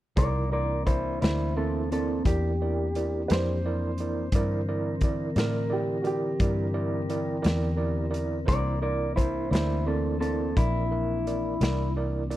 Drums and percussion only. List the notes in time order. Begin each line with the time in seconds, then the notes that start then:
0.17 kick, closed hi-hat
0.87 kick, closed hi-hat
1.22 snare, closed hi-hat
1.92 closed hi-hat
2.25 kick, closed hi-hat
2.95 closed hi-hat
3.30 snare, closed hi-hat
3.98 closed hi-hat
4.32 kick, closed hi-hat
5.01 kick, closed hi-hat
5.36 snare, closed hi-hat
6.05 closed hi-hat
6.40 kick, closed hi-hat
7.10 closed hi-hat
7.44 snare, closed hi-hat
8.14 closed hi-hat
8.48 kick, closed hi-hat
9.18 kick, closed hi-hat
9.53 snare, closed hi-hat
10.22 closed hi-hat
10.57 kick, closed hi-hat
11.27 closed hi-hat
11.61 snare, closed hi-hat
12.31 closed hi-hat